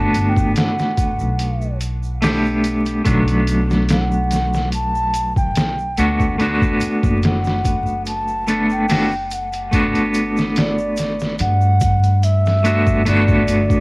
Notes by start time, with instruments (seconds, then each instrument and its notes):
Already playing: upright bass G1, clean electric guitar A3 B3 D4 F#4, flute A5
0.14 upright bass G1, closed hi-hat, shaker
0.29 flute G5
0.36 kick, shaker
0.56 flute F#5, snare, closed hi-hat, shaker
0.79 snare, shaker
0.97 kick, closed hi-hat, shaker
1.19 upright bass B1, shaker
1.39 closed hi-hat, shaker
1.62 shaker
1.81 closed hi-hat, shaker
2.03 shaker
2.22 clean electric guitar A3 B3 D4 G4, snare, open hi-hat, shaker
2.45 shaker
2.64 closed hi-hat, shaker
2.86 closed hi-hat, shaker
3.05 upright bass B1, clean electric guitar F#3 A3 B3 D4, kick, closed hi-hat, shaker
3.28 closed hi-hat, shaker
3.47 closed hi-hat, shaker
3.71 snare, shaker
3.89 flute F#5, snare, closed hi-hat, shaker
4.12 shaker
4.31 snare, closed hi-hat, shaker
4.53 snare, shaker
4.72 flute A5, closed hi-hat, shaker
4.95 shaker
5.14 closed hi-hat, shaker
5.36 flute G5, kick, shaker
5.56 snare, closed hi-hat, shaker
5.79 shaker
5.97 upright bass D2, clean electric guitar A3 B3 D4 F#4, flute F#5, closed hi-hat, shaker
6.20 kick, shaker
6.38 clean electric guitar A3 B3 D4 F#4, closed hi-hat, shaker
6.62 kick, shaker
6.81 closed hi-hat, shaker
7.03 upright bass F#1, kick, shaker
7.23 flute F#5, snare, closed hi-hat, shaker
7.44 snare, shaker
7.65 kick, closed hi-hat, shaker
7.86 shaker
8.06 flute A5, closed hi-hat, shaker
8.28 shaker
8.48 clean electric guitar A3 B3 D4 A4, closed hi-hat, shaker
8.70 flute G5, shaker
8.89 clean electric guitar A3 B3 D4 F#4, snare, open hi-hat, shaker
9.11 shaker
9.31 flute F#5, closed hi-hat, shaker
9.53 closed hi-hat, shaker
9.71 upright bass G1, clean electric guitar A3 B3 D4 F#4, kick, closed hi-hat, shaker
9.95 closed hi-hat, shaker
10.14 closed hi-hat, shaker
10.37 snare, shaker
10.56 flute D5, snare, closed hi-hat, shaker
10.78 shaker
10.97 snare, closed hi-hat, shaker
11.20 snare, shaker
11.39 upright bass G2, flute F#5, closed hi-hat, shaker
11.61 shaker
11.80 kick, closed hi-hat, shaker
12.03 closed hi-hat, shaker
12.23 flute E5, closed hi-hat, shaker
12.45 snare, shaker
12.64 clean electric guitar A3 B3 D4 F#4, closed hi-hat, shaker
12.87 kick, shaker
13.05 upright bass G1, clean electric guitar A3 B3 D4 F#4, flute D5, closed hi-hat, shaker
13.28 kick, shaker
13.48 upright bass G1, closed hi-hat, shaker
13.70 kick, shaker